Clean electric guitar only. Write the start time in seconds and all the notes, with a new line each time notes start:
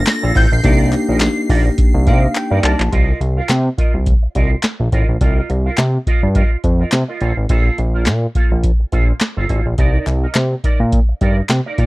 0.06 muted clean electric guitar stroke
0.22 A#3 F4 A4
0.35 A#3 F4 A4
0.51 muted clean electric guitar stroke
0.64 D#4 A#4 D5
0.93 muted clean electric guitar stroke
1.08 D#4 A#4 D#5
1.21 muted clean electric guitar stroke
1.37 muted clean electric guitar stroke
1.49 D#4 A#4 D5
1.66 muted clean electric guitar stroke
1.78 muted clean electric guitar stroke
1.94 muted clean electric guitar stroke
2.06 D#4 A#4 D5
2.23 muted clean electric guitar stroke
2.35 muted clean electric guitar stroke
2.51 D#4 A#4 D5
2.63 D#4 A#4 D5
2.79 muted clean electric guitar stroke
2.92 F4 A#4 D#5
3.21 muted clean electric guitar stroke
3.37 F4 A#4 F5
3.49 muted clean electric guitar stroke
3.65 muted clean electric guitar stroke
3.78 F4 A#4 D#5
3.94 muted clean electric guitar stroke
4.07 muted clean electric guitar stroke
4.23 muted clean electric guitar stroke
4.35 F4 A#4 D#5
4.51 muted clean electric guitar stroke
4.64 muted clean electric guitar stroke
4.80 muted clean electric guitar stroke
4.92 F4 A#4 D#5
5.09 muted clean electric guitar stroke
5.21 F4 A#4 D#5
5.50 muted clean electric guitar stroke
5.66 F4 A#4 F5
5.94 muted clean electric guitar stroke
6.07 F4 A#4 D#5
6.23 muted clean electric guitar stroke
6.35 F4 A#4 D#5
6.51 muted clean electric guitar stroke
6.64 muted clean electric guitar stroke
6.80 F4 A#4 D#5
6.92 muted clean electric guitar stroke
7.08 F4 A#4 D#5
7.20 A#3 F4 A4
7.37 muted clean electric guitar stroke
7.49 A#3 F4 A4
7.79 muted clean electric guitar stroke
7.94 A#3 F4 A#4
8.23 muted clean electric guitar stroke
8.35 A#3 F4 A4
8.51 muted clean electric guitar stroke
8.64 muted clean electric guitar stroke
8.80 muted clean electric guitar stroke
8.92 A#3 F4 A4
9.08 muted clean electric guitar stroke
9.37 A#3 F4 A4
9.49 A#3 F4 A4
9.66 muted clean electric guitar stroke
9.78 D#4 A#4 D5
10.07 muted clean electric guitar stroke
10.23 D#4 A#4 D#5
10.35 muted clean electric guitar stroke
10.52 muted clean electric guitar stroke
10.64 D#4 A#4 D5
10.80 muted clean electric guitar stroke
10.93 muted clean electric guitar stroke
11.09 muted clean electric guitar stroke
11.21 D#4 A#4 D5
11.38 muted clean electric guitar stroke
11.50 muted clean electric guitar stroke
11.66 D#4 A#4 D5
11.79 D#4 A#4 D5